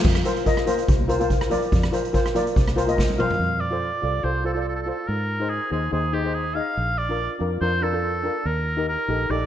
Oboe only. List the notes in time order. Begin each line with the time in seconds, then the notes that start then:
3.19 F5
3.61 D5
4.24 C5
4.46 A4
4.53 A4
4.61 A4
4.69 A4
4.76 A4
4.82 A4
4.90 A4
5.08 A#4
5.50 G#4
5.72 G#4
5.93 G#4
6.14 G4
6.34 G#4
6.55 F5
6.98 D5
7.61 C5
7.83 A4
8.47 A#4
8.89 A#4
9.31 D5